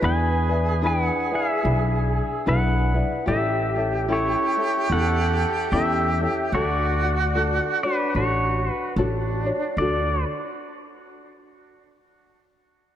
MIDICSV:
0, 0, Header, 1, 5, 480
1, 0, Start_track
1, 0, Key_signature, 2, "major"
1, 0, Tempo, 811908
1, 21, Time_signature, 4, 2, 24, 8
1, 7661, End_track
2, 0, Start_track
2, 0, Title_t, "Pedal steel guitar"
2, 0, Program_c, 0, 26
2, 25, Note_on_c, 0, 71, 76
2, 31, Note_on_c, 0, 80, 107
2, 480, Note_off_c, 0, 71, 0
2, 507, Note_on_c, 0, 71, 75
2, 513, Note_on_c, 0, 79, 103
2, 521, Note_off_c, 0, 80, 0
2, 625, Note_off_c, 0, 79, 0
2, 625, Note_on_c, 0, 78, 103
2, 773, Note_off_c, 0, 71, 0
2, 796, Note_on_c, 0, 68, 75
2, 797, Note_off_c, 0, 78, 0
2, 800, Note_on_c, 0, 76, 98
2, 1442, Note_off_c, 0, 68, 0
2, 1468, Note_off_c, 0, 76, 0
2, 1468, Note_on_c, 0, 71, 75
2, 1471, Note_on_c, 0, 78, 102
2, 1922, Note_off_c, 0, 71, 0
2, 1937, Note_off_c, 0, 78, 0
2, 1939, Note_on_c, 0, 76, 89
2, 1942, Note_on_c, 0, 67, 76
2, 2399, Note_off_c, 0, 67, 0
2, 2436, Note_off_c, 0, 76, 0
2, 2437, Note_on_c, 0, 64, 70
2, 2438, Note_on_c, 0, 73, 91
2, 2887, Note_off_c, 0, 64, 0
2, 2911, Note_on_c, 0, 78, 102
2, 2917, Note_on_c, 0, 69, 77
2, 2924, Note_off_c, 0, 73, 0
2, 3367, Note_off_c, 0, 69, 0
2, 3383, Note_on_c, 0, 67, 74
2, 3386, Note_on_c, 0, 76, 90
2, 3402, Note_off_c, 0, 78, 0
2, 3840, Note_off_c, 0, 67, 0
2, 3867, Note_off_c, 0, 76, 0
2, 3870, Note_on_c, 0, 74, 94
2, 3872, Note_on_c, 0, 66, 77
2, 4613, Note_off_c, 0, 66, 0
2, 4629, Note_off_c, 0, 74, 0
2, 4631, Note_on_c, 0, 71, 80
2, 4638, Note_on_c, 0, 62, 62
2, 4813, Note_off_c, 0, 62, 0
2, 4823, Note_off_c, 0, 71, 0
2, 4825, Note_on_c, 0, 73, 80
2, 4833, Note_on_c, 0, 66, 59
2, 5156, Note_off_c, 0, 73, 0
2, 5156, Note_on_c, 0, 71, 80
2, 5280, Note_off_c, 0, 71, 0
2, 5284, Note_off_c, 0, 66, 0
2, 5784, Note_on_c, 0, 74, 80
2, 6051, Note_off_c, 0, 74, 0
2, 7661, End_track
3, 0, Start_track
3, 0, Title_t, "Flute"
3, 0, Program_c, 1, 73
3, 15, Note_on_c, 1, 68, 123
3, 1780, Note_off_c, 1, 68, 0
3, 1941, Note_on_c, 1, 67, 124
3, 3860, Note_on_c, 1, 66, 119
3, 3869, Note_off_c, 1, 67, 0
3, 5142, Note_off_c, 1, 66, 0
3, 5310, Note_on_c, 1, 62, 75
3, 5763, Note_off_c, 1, 62, 0
3, 5785, Note_on_c, 1, 66, 84
3, 6052, Note_off_c, 1, 66, 0
3, 7661, End_track
4, 0, Start_track
4, 0, Title_t, "Ukulele"
4, 0, Program_c, 2, 24
4, 3, Note_on_c, 2, 68, 66
4, 4, Note_on_c, 2, 62, 70
4, 8, Note_on_c, 2, 64, 77
4, 10, Note_on_c, 2, 71, 84
4, 284, Note_off_c, 2, 71, 0
4, 291, Note_on_c, 2, 71, 52
4, 293, Note_off_c, 2, 64, 0
4, 300, Note_off_c, 2, 62, 0
4, 300, Note_on_c, 2, 64, 51
4, 301, Note_off_c, 2, 68, 0
4, 307, Note_on_c, 2, 62, 42
4, 480, Note_off_c, 2, 62, 0
4, 483, Note_on_c, 2, 68, 85
4, 485, Note_off_c, 2, 64, 0
4, 486, Note_off_c, 2, 71, 0
4, 487, Note_on_c, 2, 62, 81
4, 492, Note_on_c, 2, 64, 89
4, 494, Note_on_c, 2, 71, 93
4, 771, Note_off_c, 2, 71, 0
4, 776, Note_off_c, 2, 64, 0
4, 778, Note_on_c, 2, 71, 56
4, 781, Note_off_c, 2, 68, 0
4, 783, Note_off_c, 2, 62, 0
4, 783, Note_on_c, 2, 64, 51
4, 790, Note_on_c, 2, 62, 45
4, 963, Note_off_c, 2, 62, 0
4, 965, Note_on_c, 2, 68, 58
4, 966, Note_off_c, 2, 64, 0
4, 970, Note_on_c, 2, 62, 62
4, 971, Note_off_c, 2, 71, 0
4, 973, Note_on_c, 2, 64, 60
4, 978, Note_on_c, 2, 71, 69
4, 1447, Note_off_c, 2, 68, 0
4, 1451, Note_off_c, 2, 62, 0
4, 1454, Note_on_c, 2, 68, 74
4, 1456, Note_off_c, 2, 71, 0
4, 1458, Note_off_c, 2, 64, 0
4, 1458, Note_on_c, 2, 62, 82
4, 1461, Note_on_c, 2, 64, 82
4, 1463, Note_on_c, 2, 71, 88
4, 1732, Note_off_c, 2, 71, 0
4, 1734, Note_off_c, 2, 64, 0
4, 1739, Note_on_c, 2, 71, 55
4, 1741, Note_off_c, 2, 62, 0
4, 1741, Note_on_c, 2, 64, 49
4, 1747, Note_off_c, 2, 68, 0
4, 1748, Note_on_c, 2, 62, 41
4, 1926, Note_on_c, 2, 67, 81
4, 1928, Note_off_c, 2, 62, 0
4, 1929, Note_off_c, 2, 64, 0
4, 1931, Note_on_c, 2, 61, 69
4, 1936, Note_off_c, 2, 71, 0
4, 1936, Note_on_c, 2, 64, 78
4, 1939, Note_on_c, 2, 69, 76
4, 2215, Note_off_c, 2, 69, 0
4, 2222, Note_on_c, 2, 69, 57
4, 2223, Note_off_c, 2, 67, 0
4, 2225, Note_off_c, 2, 61, 0
4, 2225, Note_off_c, 2, 64, 0
4, 2232, Note_on_c, 2, 64, 52
4, 2234, Note_on_c, 2, 61, 49
4, 2407, Note_off_c, 2, 61, 0
4, 2411, Note_off_c, 2, 64, 0
4, 2413, Note_off_c, 2, 69, 0
4, 2414, Note_on_c, 2, 61, 82
4, 2415, Note_on_c, 2, 67, 83
4, 2419, Note_on_c, 2, 64, 89
4, 2420, Note_on_c, 2, 69, 91
4, 2695, Note_off_c, 2, 69, 0
4, 2700, Note_off_c, 2, 64, 0
4, 2702, Note_on_c, 2, 69, 54
4, 2707, Note_off_c, 2, 61, 0
4, 2707, Note_on_c, 2, 64, 54
4, 2708, Note_off_c, 2, 67, 0
4, 2715, Note_on_c, 2, 61, 45
4, 2887, Note_off_c, 2, 61, 0
4, 2891, Note_off_c, 2, 64, 0
4, 2891, Note_on_c, 2, 67, 60
4, 2894, Note_on_c, 2, 61, 65
4, 2896, Note_off_c, 2, 69, 0
4, 2898, Note_on_c, 2, 64, 65
4, 2903, Note_on_c, 2, 69, 59
4, 3378, Note_off_c, 2, 67, 0
4, 3381, Note_off_c, 2, 64, 0
4, 3384, Note_on_c, 2, 67, 78
4, 3387, Note_off_c, 2, 61, 0
4, 3388, Note_on_c, 2, 64, 83
4, 3389, Note_on_c, 2, 61, 86
4, 3392, Note_off_c, 2, 69, 0
4, 3395, Note_on_c, 2, 69, 85
4, 3659, Note_off_c, 2, 69, 0
4, 3666, Note_on_c, 2, 69, 57
4, 3670, Note_off_c, 2, 64, 0
4, 3672, Note_off_c, 2, 61, 0
4, 3672, Note_off_c, 2, 67, 0
4, 3677, Note_on_c, 2, 64, 47
4, 3679, Note_on_c, 2, 61, 47
4, 3861, Note_off_c, 2, 69, 0
4, 3866, Note_off_c, 2, 64, 0
4, 3867, Note_off_c, 2, 61, 0
4, 3868, Note_on_c, 2, 69, 76
4, 3871, Note_on_c, 2, 62, 72
4, 3873, Note_on_c, 2, 66, 83
4, 4152, Note_off_c, 2, 66, 0
4, 4154, Note_off_c, 2, 69, 0
4, 4155, Note_off_c, 2, 62, 0
4, 4160, Note_on_c, 2, 66, 53
4, 4165, Note_on_c, 2, 62, 46
4, 4340, Note_off_c, 2, 62, 0
4, 4346, Note_off_c, 2, 66, 0
4, 4346, Note_on_c, 2, 69, 86
4, 4347, Note_on_c, 2, 62, 82
4, 4353, Note_on_c, 2, 66, 78
4, 4627, Note_off_c, 2, 69, 0
4, 4629, Note_on_c, 2, 73, 53
4, 4633, Note_off_c, 2, 62, 0
4, 4634, Note_off_c, 2, 66, 0
4, 4641, Note_on_c, 2, 66, 48
4, 4644, Note_on_c, 2, 62, 44
4, 4818, Note_off_c, 2, 62, 0
4, 4822, Note_off_c, 2, 73, 0
4, 4824, Note_off_c, 2, 66, 0
4, 4824, Note_on_c, 2, 69, 62
4, 4825, Note_on_c, 2, 62, 66
4, 4831, Note_on_c, 2, 66, 58
4, 4832, Note_on_c, 2, 73, 63
4, 5304, Note_off_c, 2, 69, 0
4, 5306, Note_on_c, 2, 69, 69
4, 5309, Note_off_c, 2, 66, 0
4, 5311, Note_off_c, 2, 62, 0
4, 5311, Note_on_c, 2, 66, 78
4, 5314, Note_off_c, 2, 73, 0
4, 5314, Note_on_c, 2, 62, 87
4, 5316, Note_on_c, 2, 73, 85
4, 5588, Note_off_c, 2, 73, 0
4, 5593, Note_off_c, 2, 66, 0
4, 5593, Note_off_c, 2, 69, 0
4, 5595, Note_on_c, 2, 73, 55
4, 5597, Note_off_c, 2, 62, 0
4, 5601, Note_on_c, 2, 66, 56
4, 5608, Note_on_c, 2, 62, 49
4, 5785, Note_off_c, 2, 73, 0
4, 5787, Note_off_c, 2, 62, 0
4, 5787, Note_off_c, 2, 66, 0
4, 5788, Note_on_c, 2, 69, 75
4, 5794, Note_on_c, 2, 62, 80
4, 5798, Note_on_c, 2, 66, 84
4, 6016, Note_off_c, 2, 69, 0
4, 6019, Note_off_c, 2, 62, 0
4, 6021, Note_off_c, 2, 66, 0
4, 7661, End_track
5, 0, Start_track
5, 0, Title_t, "Upright bass"
5, 0, Program_c, 3, 32
5, 14, Note_on_c, 3, 40, 91
5, 641, Note_off_c, 3, 40, 0
5, 974, Note_on_c, 3, 35, 89
5, 1289, Note_off_c, 3, 35, 0
5, 1460, Note_on_c, 3, 35, 91
5, 1773, Note_off_c, 3, 35, 0
5, 1936, Note_on_c, 3, 33, 92
5, 2562, Note_off_c, 3, 33, 0
5, 2895, Note_on_c, 3, 40, 88
5, 3210, Note_off_c, 3, 40, 0
5, 3381, Note_on_c, 3, 40, 92
5, 3694, Note_off_c, 3, 40, 0
5, 3857, Note_on_c, 3, 38, 93
5, 4483, Note_off_c, 3, 38, 0
5, 4817, Note_on_c, 3, 33, 84
5, 5131, Note_off_c, 3, 33, 0
5, 5300, Note_on_c, 3, 33, 93
5, 5612, Note_off_c, 3, 33, 0
5, 5775, Note_on_c, 3, 38, 89
5, 6047, Note_off_c, 3, 38, 0
5, 7661, End_track
0, 0, End_of_file